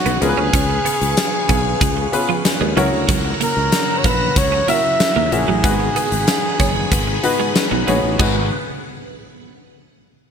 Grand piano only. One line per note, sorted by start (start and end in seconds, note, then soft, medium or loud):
0.00 0.21 B3 medium
0.00 0.24 D#4 medium
0.00 0.23 F#4 medium
0.00 0.22 G#4 medium
0.00 0.23 C#5 medium
0.21 1.13 C#3 medium
0.21 1.24 B3 medium
0.21 1.24 C#4 medium
0.21 1.24 F4 medium
0.21 1.24 G#4 medium
0.21 0.28 A#4 medium
0.29 1.27 B4 medium
2.12 2.56 B3 medium
2.12 2.56 C#4 medium
2.12 2.56 F4 medium
2.12 2.56 G#4 medium
2.12 2.57 B4 loud
2.76 3.69 C#3 medium
2.76 3.79 C#4 medium
2.76 3.79 E4 medium
2.76 3.79 F#4 medium
2.76 3.79 A#4 loud
2.76 3.79 C#5 loud
4.68 5.11 C#4 medium
4.68 5.11 E4 medium
4.68 5.12 F#4 medium
4.68 5.12 A#4 medium
4.68 5.12 E5 medium
5.32 5.53 C#4 medium
5.32 5.54 E4 medium
5.32 5.54 F#4 medium
5.32 5.54 A#4 medium
5.32 5.54 E5 medium
5.63 6.56 G#2 medium
5.63 6.50 B3 medium
5.63 6.50 D#4 medium
5.63 6.51 F#4 medium
5.63 6.51 G#4 medium
5.63 6.51 B4 medium
7.23 7.67 B3 medium
7.23 7.67 D#4 medium
7.23 7.67 F#4 medium
7.23 7.67 G#4 medium
7.23 7.67 B4 loud
7.87 8.09 B3 medium
7.87 8.09 D#4 medium
7.87 8.09 F#4 medium
7.87 8.09 G#4 medium
7.87 8.10 C#5 loud
8.20 8.49 G#1 medium
8.20 8.49 D#4 medium
8.20 8.49 F#4 medium
8.20 8.49 G#4 medium
8.20 8.49 B4 medium